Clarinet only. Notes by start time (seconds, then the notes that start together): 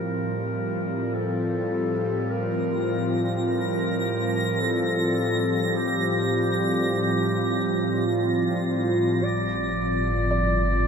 Already playing: A#4
1.14 A4
2.31 A#4
3.47 A#4
4.60 A4
5.76 G4
8.06 F4
9.24 D5